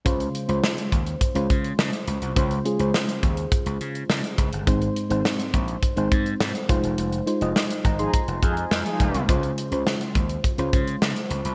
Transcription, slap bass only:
X:1
M:4/4
L:1/16
Q:1/4=104
K:Dblyd
V:1 name="Slap bass" clef=bass
D,,2 z D,, z2 E,,2 z D,, D,2 D, z D,, C,, | D,,2 z D,, z2 E,,2 z D,, D,2 D, z D,, G,,, | A,,,2 z A,,, z2 B,,,2 z A,,, A,,2 A,, z F,,, _F,,, | F,,,2 z F,,, z2 A,,,2 z F,,, F,,2 F,, z F,,, C,, |
D,,2 z D,, z2 E,,2 z D,, D,2 D, z D,, C,, |]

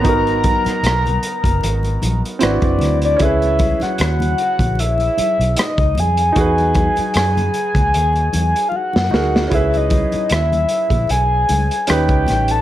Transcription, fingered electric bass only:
X:1
M:4/4
L:1/16
Q:"Swing 16ths" 1/4=76
K:C#dor
V:1 name="Fingered electric bass" clef=bass
G,,,3 z B,,,2 z F,,, G,,,2 A,,, z G,,, F,,, =D,,2 | C,,3 z D,,2 z A,,,3 z B,,, z C,, ^E,,2 | E,,3 z F,,2 z C,, D,,2 E,, z2 F,, =D,,2 | C,,3 z D,,2 z A,,, B,,,2 C,, z D,, C,, =A,,,2 |]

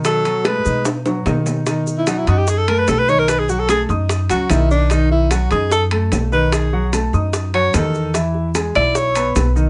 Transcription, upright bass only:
X:1
M:4/4
L:1/8
Q:1/4=148
K:Bmix
V:1 name="Upright bass" clef=bass
B,,3 B,,3 B,,2- | B,,3 F,,3 B,,,2- | B,,,3 F,,2 C,, B,,,2- | B,,,3 F,,3 B,,,2- |
B,,,3 F,,3 E,,2- | E,,3 B,,,3 B,,,2 |]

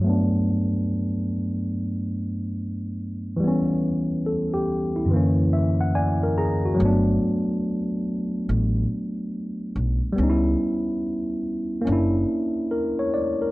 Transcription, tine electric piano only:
X:1
M:4/4
L:1/16
Q:"Swing 16ths" 1/4=71
K:G
V:1 name="Tine electric piano"
z16 | z4 A G2 E2 z e f [d_a] ^A [_A^a] F- | F z12 z3 | z12 ^A ^c d A |]
V:2 name="Tine electric piano"
[G,,F,A,B,D]16 | [E,G,B,^C]8 [F,,D,E,^A,C]8 | [F,A,B,D]16 | [G,B,^C_E=E]8 [^A,CDE]8 |]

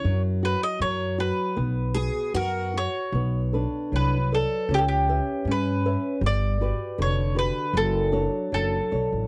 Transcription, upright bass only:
X:1
M:2/4
L:1/16
Q:1/4=78
K:F#mix
V:1 name="Upright bass" clef=bass
F,,4 F,,4 | B,,,4 F,,4 | [K:Bm] B,,,4 =C,,4 | C,,4 G,,4 |
G,,,4 ^E,,,4 | F,,,4 F,,,2 B,,, A,,, |]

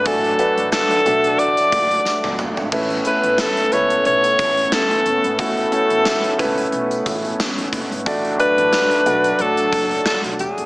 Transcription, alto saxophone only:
X:1
M:4/4
L:1/8
Q:"Swing 16ths" 1/4=90
K:A
V:1 name="Alto saxophone"
A2 A2 d3 z | z B A c c2 A2 | A4 z4 | z B3 A2 A G |]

